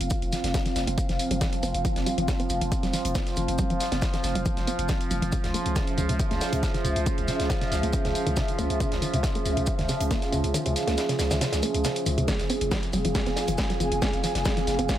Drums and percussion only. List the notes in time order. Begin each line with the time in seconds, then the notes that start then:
0.01 closed hi-hat
0.10 kick, closed hi-hat, shaker
0.22 closed hi-hat
0.32 snare, open hi-hat, shaker
0.44 snare, closed hi-hat
0.54 kick, snare, closed hi-hat, shaker
0.66 snare, closed hi-hat
0.76 snare, open hi-hat, shaker
0.87 closed hi-hat
0.98 kick, closed hi-hat, shaker
1.09 snare, closed hi-hat
1.19 open hi-hat, shaker
1.31 closed hi-hat
1.41 kick, snare, closed hi-hat, shaker
1.53 closed hi-hat
1.63 open hi-hat, shaker
1.74 closed hi-hat
1.85 kick, closed hi-hat, shaker
1.96 snare, closed hi-hat
2.06 open hi-hat, shaker
2.18 closed hi-hat
2.28 kick, snare, closed hi-hat, shaker
2.40 closed hi-hat
2.50 open hi-hat, shaker
2.61 closed hi-hat
2.72 kick, closed hi-hat, shaker
2.83 snare, closed hi-hat
2.93 snare, open hi-hat, shaker
3.05 closed hi-hat
3.15 kick, snare, closed hi-hat, shaker
3.27 snare, closed hi-hat
3.36 open hi-hat, shaker
3.48 closed hi-hat
3.58 kick, closed hi-hat, shaker
3.70 closed hi-hat
3.80 snare, open hi-hat, shaker
3.92 snare, closed hi-hat
4.02 kick, snare, closed hi-hat, shaker
4.13 snare, closed hi-hat
4.23 snare, open hi-hat, shaker
4.35 closed hi-hat
4.46 kick, closed hi-hat, shaker
4.57 snare, closed hi-hat
4.67 open hi-hat, shaker
4.79 closed hi-hat
4.89 kick, snare, closed hi-hat, shaker
5.01 closed hi-hat
5.11 open hi-hat, shaker
5.22 closed hi-hat
5.32 kick, closed hi-hat, shaker
5.44 snare, closed hi-hat
5.54 open hi-hat, shaker
5.66 closed hi-hat
5.76 kick, snare, closed hi-hat, shaker
5.87 closed hi-hat
5.98 open hi-hat, shaker
6.09 closed hi-hat
6.20 kick, closed hi-hat, shaker
6.31 snare, closed hi-hat
6.41 snare, open hi-hat, shaker
6.53 closed hi-hat
6.63 kick, snare, closed hi-hat, shaker
6.74 snare, closed hi-hat
6.85 open hi-hat, shaker
6.96 closed hi-hat
7.06 kick, closed hi-hat, shaker
7.18 closed hi-hat
7.28 snare, open hi-hat, shaker
7.40 snare, closed hi-hat
7.50 kick, snare, closed hi-hat, shaker
7.61 snare, closed hi-hat
7.71 snare, open hi-hat, shaker
7.83 closed hi-hat
7.93 kick, closed hi-hat, shaker
8.05 snare, closed hi-hat
8.15 open hi-hat, shaker
8.27 closed hi-hat
8.36 kick, snare, closed hi-hat, shaker
8.48 closed hi-hat
8.59 open hi-hat, shaker
8.70 closed hi-hat
8.80 kick, closed hi-hat, shaker
8.92 snare, closed hi-hat
9.02 open hi-hat, shaker
9.14 closed hi-hat
9.23 kick, snare, closed hi-hat, shaker
9.35 closed hi-hat
9.46 open hi-hat, shaker
9.57 closed hi-hat
9.66 kick, closed hi-hat, shaker
9.79 snare, closed hi-hat
9.89 snare, open hi-hat, shaker
10.00 closed hi-hat
10.11 kick, snare, closed hi-hat, shaker
10.22 snare, closed hi-hat
10.32 open hi-hat, shaker
10.44 closed hi-hat
10.54 closed hi-hat, shaker
10.66 closed hi-hat
10.76 snare, open hi-hat, shaker
10.88 snare, closed hi-hat
10.97 snare, closed hi-hat, shaker
11.09 snare, closed hi-hat
11.19 snare, open hi-hat, shaker
11.31 snare, closed hi-hat, shaker
11.41 snare, closed hi-hat, shaker
11.52 snare, closed hi-hat, shaker
11.63 open hi-hat, shaker
11.74 closed hi-hat
11.84 snare, closed hi-hat, shaker
11.96 closed hi-hat
12.06 open hi-hat, shaker
12.18 closed hi-hat
12.28 kick, snare, closed hi-hat, shaker
12.39 snare, closed hi-hat
12.49 open hi-hat, shaker
12.61 closed hi-hat
12.71 kick, snare, closed hi-hat, shaker
12.83 closed hi-hat
12.93 open hi-hat, shaker
13.05 closed hi-hat
13.15 kick, snare, closed hi-hat, shaker
13.26 snare, closed hi-hat
13.36 snare, open hi-hat, shaker
13.48 closed hi-hat
13.58 kick, snare, closed hi-hat, shaker
13.70 snare, closed hi-hat
13.80 open hi-hat, shaker
13.92 closed hi-hat
14.02 kick, snare, closed hi-hat, shaker
14.13 closed hi-hat
14.23 snare, open hi-hat, shaker
14.35 snare, closed hi-hat
14.45 kick, snare, closed hi-hat, shaker
14.57 snare, closed hi-hat
14.67 snare, open hi-hat, shaker
14.79 closed hi-hat
14.89 kick, snare, closed hi-hat, shaker